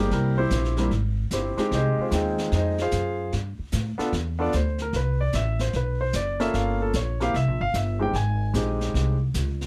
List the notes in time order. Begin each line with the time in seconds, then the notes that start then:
Already playing: G3 A#3 C4 G4
0.10 C2 A#3 E4 G4 A#4, brush sweep, snare
0.38 C4 E4 G4 C5
0.50 A#1, snare, hi-hat pedal
0.64 snare
0.77 G3 A#3 C4 E4, snare
0.91 G#1, brush sweep, snare
1.31 G1 C4 E4 G4 C5, snare, hi-hat pedal
1.57 G#3 C4 D#4 G4, muted upright bass stroke, snare
1.71 C2 D#4 G#4 C5 D#5, brush sweep, snare
1.98 F4 G#4 C5, muted upright bass stroke
2.02 C4
2.11 D#2 G#3 C4 D#4 G5, snare, hi-hat pedal
2.38 snare
2.52 F2 D#4 D#5, brush sweep, snare
2.56 G#4 C5
2.78 F4 G#4 C5 F5, snare
2.91 F#2, snare, hi-hat pedal
3.32 G2, brush sweep, snare
3.59 muted upright bass stroke
3.72 A2, snare, hi-hat pedal
3.98 B3 D4 F4 A4, muted upright bass stroke, snare
4.13 E2, brush sweep, snare
4.39 B3 D4 F4 A4 D5
4.52 D2 C5, snare, hi-hat pedal
4.78 A#4, snare
4.93 C2 B4, brush sweep, snare
5.21 D5
5.33 A1 E5, snare, hi-hat pedal
5.59 C5, snare
5.73 B1 B4, brush sweep, snare
6.01 C5
6.13 F#1 D5, snare, hi-hat pedal
6.40 A#3 C#4 F4 A4 E5, snare
6.54 G1 F5, brush sweep, snare
6.82 A4
6.93 A#1 C#5, snare, hi-hat pedal
7.20 A#3 C4 E4 G4 F5, snare
7.34 C2 E5, brush sweep, snare
7.47 A#1
7.61 G1 F5
7.74 G1 E5, snare, hi-hat pedal
7.99 G#3 C4 D#4 G4 G5
8.13 G#1 G#5, brush sweep, snare
8.54 A#1 G#3 C4 D#4 G4, snare, hi-hat pedal
8.81 snare
8.94 C2, brush sweep, snare
9.34 C#2, snare, hi-hat pedal
9.61 snare